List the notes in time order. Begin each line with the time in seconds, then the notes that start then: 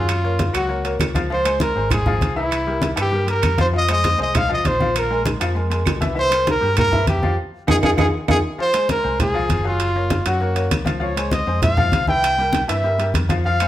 Already playing: F#2 F#3 F4 G#4 F5
0.09 high conga, high timbale, claves
0.24 A#3 A#4 C#5, high conga
0.39 high conga, high timbale
0.53 C#2 F#3 F#4 F#5, high conga, high timbale, claves
0.68 A#3 A#4 C#5, high conga
0.84 A#3 A#4 C#5, high conga, high timbale
1.00 C#2, high conga, high timbale, low timbale, claves
1.15 F3 F4 F5, high conga, high timbale
1.30 F3 F4 C5 F5, high conga
1.45 G#3 G#4 C5, high conga, high timbale, claves
1.60 A#4, high conga, high timbale
1.75 G#1 G#3 G#4 C5, high conga
1.91 G#4, high conga, low conga, high timbale, claves
2.06 F3 F4 F5, high conga, low conga
2.21 C2, high conga, high timbale
2.36 E3 E4 E5
2.51 high conga, high timbale, claves
2.67 G3 G4 A#4, high conga
2.82 high conga, high timbale
2.96 G2 E3 E4 E5, high conga, high timbale, claves
3.01 G4
3.12 G3 G4 A#4, high conga
3.27 G3 G4 A#4, high conga, high timbale
3.42 F2, high conga, high timbale, claves
3.58 F3 F4 C5 F5, high conga, high timbale
3.73 F3 F4 F5, high conga
3.77 D#5
3.89 G#3 G#4 C5 D#5, high conga, high timbale, claves
4.04 high conga, high timbale
4.18 C2 G#3 G#4 C5, high conga
4.22 D#5
4.34 F5, high conga, low conga, high timbale, claves
4.49 F3 F4 F5, high conga
4.53 D#5
4.64 A#1 C5, high conga, high timbale
4.80 F3 F4 F5, high conga
4.95 A#4, high conga, high timbale, claves
5.10 G#3 G#4 A#4, high conga
5.26 high conga, high timbale
5.40 F2 F3 F4 F5, high conga, high timbale, claves
5.55 G#3 G#4 A#4, high conga
5.70 G#3 G#4 A#4, high conga, high timbale
5.86 C2, high conga, high timbale, low timbale, claves
6.01 E3 E4 E5, high conga, high timbale
6.15 E3 E4 E5, high conga
6.19 C5
6.30 G3 G4 A#4, high conga, high timbale, claves
6.47 A#4, high conga, high timbale
6.61 G2 G3 G4 A#4, high conga
6.77 A#4, high conga, low conga, high timbale, claves
6.91 E3 E4 E5, high conga, low conga
7.07 F2 G4, high conga, high timbale
7.22 F3 F4 F5, high conga
7.67 F2 D#4 F4 G#4, high conga, high timbale, claves
7.83 F2 D#4 F4 G#4, high conga, high timbale, claves
7.97 F2 D#4 F4 G#4, high conga, high timbale, claves
8.28 F2 D#4 F4 G#4, high conga, high timbale, claves
8.58 F3 F4 C5 F5, high conga
8.74 G#3 G#4 C5, high conga, high timbale
8.89 A#4, high conga, high timbale
9.04 C2 G#3 G#4 C5, high conga
9.20 G#4, high conga, low conga, high timbale
9.34 F3 F4 F5, high conga
9.49 F#1, high conga, high timbale
9.64 F#3 F4 G#4 F5
9.80 high conga, high timbale
9.96 A#3 A#4 C#5, high conga
10.10 high conga, high timbale
10.26 F#2 F#3 F#4 F#5, high conga, high timbale
10.40 A#3 A#4 C#5, high conga
10.56 A#3 A#4 C#5, high conga, high timbale
10.71 C#2, high conga, high timbale
10.85 F3 F4 F5, high conga, high timbale
11.00 F3 F4 C#5 F5, high conga
11.16 G#3 G#4 C5, high conga, high timbale
11.31 D#5, high conga, high timbale
11.47 F2 G#3 G#4 C5, high conga
11.62 F5, high conga, low conga, high timbale
11.77 F3 F4 F5, high conga, low conga
11.92 C2, high conga, high timbale
12.07 E3 E4 E5 G5, high conga
12.23 high conga, high timbale
12.38 G3 G4 A#4, high conga
12.53 high conga, high timbale
12.68 G2 E3 E4 E5, high conga, high timbale
12.83 G3 G4 A#4, high conga
12.98 G3 G4 A#4, high conga, high timbale
13.14 F2, high conga, high timbale
13.29 F3 F4 F5, high conga, high timbale
13.45 F3 F4 F5, high conga
13.60 G#3 G#4 C5, high conga, high timbale, claves